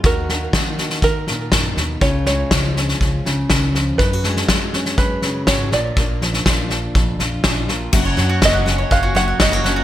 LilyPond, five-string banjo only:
\new Staff \with { instrumentName = "Five-string banjo" } { \time 4/4 \key ges \major \tempo 4 = 122 bes'2 bes'2 | des''8 des''4. r2 | ces''2 ces''4 des''8 d''8~ | d''2. r4 |
r4 ees''4 f''8 ges''8 ees''4 | }